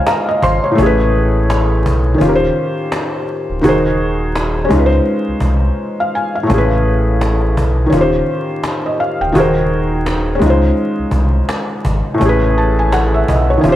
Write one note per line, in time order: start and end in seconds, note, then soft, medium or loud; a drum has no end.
0.00 0.73 G#3 medium
0.00 0.71 C#4 medium
0.00 0.75 D#4 medium
0.00 0.77 F4 medium
0.00 0.44 C5 medium
0.00 0.64 C#5 medium
0.00 0.28 D#5 medium
0.00 0.08 F5 medium
0.00 0.80 G#5 medium
0.06 0.27 F5 medium
0.06 0.40 A#5 medium
0.06 cajon slap loud
0.28 0.42 D#5 medium
0.42 0.60 G#1 loud
0.42 0.63 C5 medium
0.42 0.76 C6 medium
0.42 cajon bass loud
0.64 0.97 C#5 medium
0.71 2.15 A2 medium
0.71 2.17 A3 medium
0.78 1.88 A1 loud
0.78 2.17 C#4 medium
0.78 cajon bass loud
0.82 2.20 G#4 medium
0.82 2.22 B4 medium
1.12 cajon slap soft
1.50 cajon slap loud
1.86 2.15 B1 medium
1.86 cajon bass loud
2.14 3.57 D#3 medium
2.14 3.59 C#4 medium
2.21 2.51 D#1 loud
2.21 3.61 F4 medium
2.21 3.63 G4 medium
2.21 cajon bass loud
2.29 2.32 A#4 medium
2.35 3.67 C5 medium
2.56 cajon slap soft
2.78 cajon slap soft
2.92 cajon slap loud
3.26 cajon slap soft
3.50 3.62 D1 medium
3.61 4.67 D#1 loud
3.61 4.69 D#3 medium
3.61 4.70 D#4 medium
3.61 4.71 F#4 medium
3.61 cajon bass loud
3.65 4.72 G#4 medium
3.65 4.72 A#4 medium
3.65 4.73 C5 medium
3.98 cajon slap soft
4.36 cajon slap loud
4.65 6.45 G#3 medium
4.65 6.43 C#4 medium
4.71 5.00 C#2 loud
4.71 6.46 D#4 medium
4.71 cajon bass loud
4.71 cajon slap soft
4.76 6.48 F4 medium
4.76 4.83 B4 medium
4.86 6.53 C5 medium
5.06 cajon slap soft
5.28 5.34 C2 soft
5.40 5.71 C2 medium
5.40 cajon bass medium
6.00 6.14 F5 medium
6.15 6.34 G#5 medium
6.36 6.69 F5 medium
6.43 7.86 A2 medium
6.43 7.88 A3 medium
6.50 7.59 A1 loud
6.50 7.88 C#4 medium
6.50 cajon bass loud
6.54 7.92 G#4 medium
6.54 7.94 B4 medium
6.84 cajon slap soft
7.21 cajon slap loud
7.57 7.87 B1 medium
7.57 cajon bass loud
7.86 9.29 D#3 medium
7.86 9.31 C#4 medium
7.93 8.22 D#1 loud
7.93 9.33 F4 medium
7.93 cajon bass medium
7.97 9.35 G4 medium
7.97 9.37 C5 medium
8.27 cajon slap soft
8.49 cajon slap soft
8.64 cajon slap loud
8.86 8.99 D#5 medium
8.98 9.19 F5 medium
8.98 cajon slap soft
9.21 9.33 D1 medium
9.21 9.55 G5 medium
9.32 10.38 D#1 loud
9.32 10.41 D#3 medium
9.32 10.41 D#4 medium
9.32 10.42 F#4 medium
9.32 cajon bass loud
9.37 10.43 G#4 medium
9.37 10.44 A#4 medium
9.37 10.44 C5 medium
9.69 cajon slap soft
10.06 cajon slap loud
10.35 12.16 G#3 medium
10.35 12.14 C#4 medium
10.42 10.72 C#2 loud
10.42 12.17 D#4 medium
10.42 cajon bass loud
10.42 cajon slap soft
10.46 12.19 F4 medium
10.46 12.21 C5 medium
10.77 cajon slap soft
10.99 11.05 C2 soft
11.11 11.42 C2 medium
11.11 cajon bass medium
11.49 cajon slap loud
11.85 12.02 G#1 loud
11.85 cajon bass loud
12.14 13.57 A2 medium
12.14 13.59 A3 medium
12.21 13.24 A1 loud
12.21 13.60 C#4 medium
12.21 cajon bass loud
12.25 13.63 G#4 medium
12.25 13.65 B4 medium
12.55 12.77 A5 medium
12.55 cajon slap soft
12.79 12.92 G#5 medium
12.92 13.13 F#5 medium
12.92 cajon slap loud
13.14 13.28 E5 medium
13.28 13.58 B1 medium
13.28 13.48 D#5 medium
13.28 cajon bass loud
13.50 13.76 C#5 medium
13.58 13.76 D#3 medium
13.58 13.76 C#4 medium
13.64 13.76 D#1 loud
13.64 13.76 F4 medium
13.64 cajon bass medium
13.68 13.76 G4 medium
13.68 13.76 C5 medium